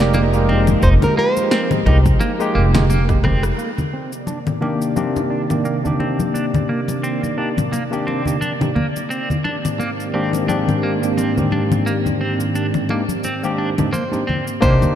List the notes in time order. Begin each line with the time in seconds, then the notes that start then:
Already playing: F1 F3 G#3 D#4 G4 A#4 D5
0.00 G#3 A#3 D#4 G4
0.14 A#3, muted conga, shaker
0.33 G#3 A#3 D#4 G4, shaker
0.49 C4, muted conga, high conga
0.67 high conga, low conga, shaker
0.83 F1 D#4 C5, kick, shaker
1.02 A#4, muted conga, low conga, shaker
1.17 A#3 C5
1.37 muted conga, shaker
1.51 C4, snare, shaker
1.71 high conga, low conga, shaker
1.86 C2 G#3 A#3 D#4 G4, kick, muted conga
2.06 kick, high conga, shaker
2.20 A#3, muted conga, shaker
2.40 G#3 A#3 D#4 G4, shaker
2.55 F1 A#3
2.75 G#3 A#3 D#4 G4, snare, muted conga, low conga, shaker
2.90 A#3, high conga, shaker
3.09 G#3 A#3 D#4 G4, kick, cross-stick, muted conga, shaker
3.24 C4, kick, cross-stick, high conga, low conga
3.43 cross-stick, shaker
3.58 C3 D#3 A#3 D5, shaker
3.78 muted conga, low conga, shaker
3.93 C4
4.12 shaker
4.27 D4, muted conga, shaker
4.47 low conga, shaker
4.61 C3 D#3 A#3 D4 G4, muted conga
4.82 shaker
4.96 C3 D#3 A#3 C4 D4 G4, high conga, shaker
5.16 muted conga, high conga, shaker
5.30 D4
5.49 C3 D#3 A#3 D4 G4, muted conga, low conga, shaker
5.65 A#3, shaker
5.83 C3 D#3 A#3 D4 G4, low conga, shaker
6.00 C4, muted conga, high conga
6.19 high conga, shaker
6.34 D4, muted conga, shaker
6.54 low conga, shaker
6.69 A#3
6.88 muted conga, shaker
7.03 C4, shaker
7.23 muted conga, high conga, shaker
7.37 C3 A#3 D4 D#4 G4
7.57 high conga, low conga, shaker
7.72 A#3, muted conga, shaker
7.91 C3 D#3 A#3 D4 G4, shaker
8.07 C4, muted conga
8.26 C3 A#3 D4 D#4 G4, low conga, shaker
8.41 D4, high conga, shaker
8.60 C3 A#3 D4 D#4 G4, muted conga, low conga, shaker
8.75 A#3, high conga, low conga
8.96 muted conga, shaker
9.10 G#2 D#3 A#3 C4 G4, shaker
9.30 low conga, shaker
9.44 D4, muted conga
9.65 low conga, shaker
9.80 A#3, muted conga, shaker
10.00 shaker
10.14 G#2 D#3 A#3 C4 D4 G4
10.33 muted conga, shaker
10.48 G#2 D#3 A#3 C4 D4 G4, high conga, shaker
10.68 muted conga, high conga, low conga, shaker
10.83 A#3
11.02 G#2 D#3 A#3 C4 D4 G4, shaker
11.17 C4, muted conga, shaker
11.36 G#2 D#3 A#3 C4 D4 G4, low conga, shaker
11.52 D4, muted conga, high conga
11.72 high conga, low conga, shaker
11.86 A#3, shaker
12.06 muted conga, low conga, shaker
12.21 C4
12.40 muted conga, shaker
12.55 D4, shaker
12.74 high conga, low conga, shaker
12.89 G#2 A#3 C4 D4 D#4 G4, muted conga
13.09 high conga, shaker
13.24 C4, muted conga, shaker
13.43 G#2 D#3 A#3 C4 D4 G4, shaker
13.58 D4
13.78 G#2 A#3 C4 D4 D#4 G4, muted conga, low conga, shaker
13.93 A#3 C5, high conga, shaker
14.11 G#2 A#3 C4 D4 D#4 G4, muted conga, shaker
14.27 C4, high conga, low conga
14.47 shaker
14.60 C2 A#3 D4 D#4 G4 C5, kick, shaker
14.82 muted conga, low conga, shaker